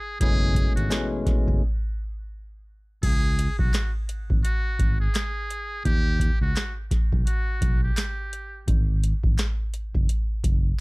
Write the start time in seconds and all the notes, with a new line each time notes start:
Already playing: G#4
0.20 F#1 B2 E3 G#3 A3 C#4 G#4, kick, closed hi-hat
0.55 kick, closed hi-hat
0.76 G#1 F#4, closed hi-hat
0.90 B2 E3 G#3 A3 C#4, snare, clap, closed hi-hat
1.26 kick, snare, closed hi-hat
1.48 F#1, kick
3.03 C#2 G#4, kick, closed hi-hat, crash
3.39 closed hi-hat
3.59 B1 F#4, kick
3.74 snare, clap, closed hi-hat
4.09 closed hi-hat
4.30 G#1, kick
4.44 F#4, closed hi-hat
4.79 G#1, kick, closed hi-hat
5.00 G#4
5.15 snare, clap, closed hi-hat
5.50 closed hi-hat
5.85 D#2 G4, kick, closed hi-hat
6.19 kick, closed hi-hat
6.41 C#2 F#4
6.56 snare, clap, closed hi-hat
6.91 kick, snare, closed hi-hat
7.12 B1, kick
7.26 F#4, closed hi-hat
7.61 B1, kick, closed hi-hat
7.83 G4
7.97 snare, clap, closed hi-hat
8.33 closed hi-hat
8.68 G#1, kick, closed hi-hat
9.04 closed hi-hat
9.24 G#1, kick
9.38 snare, clap, closed hi-hat
9.74 closed hi-hat
9.95 F#1, kick
10.09 closed hi-hat
10.44 F#1, kick, closed hi-hat